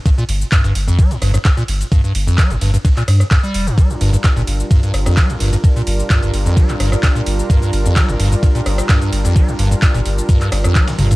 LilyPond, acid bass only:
\new Staff \with { instrumentName = "Acid bass" } { \clef bass \time 4/4 \key g \minor \tempo 4 = 129 g,16 bes,16 r8 g,16 g,16 r16 f,16 g16 g,16 g,16 g,16 g,16 bes,16 r8 | g,16 g,16 r16 f,16 g16 g,16 g,16 g,16 g,16 bes,16 r8 g,16 g8 g,16 | g16 g,16 g,16 g,16 g,16 bes,16 r8 g,16 g,16 r16 f,16 g16 g,16 g,16 g,16 | g,16 bes,16 r8 g,16 g,16 r16 f,16 g16 g,16 g,16 g,16 g,16 bes,16 r8 |
g,16 g,16 r16 f,16 g16 g,16 g,16 g,16 g,16 bes,16 r8 g,16 g,16 r16 f,16 | g16 g,16 g,16 g,16 g,16 bes,16 r8 g,16 g,16 r16 f,16 g16 g,16 g,16 g,16 | }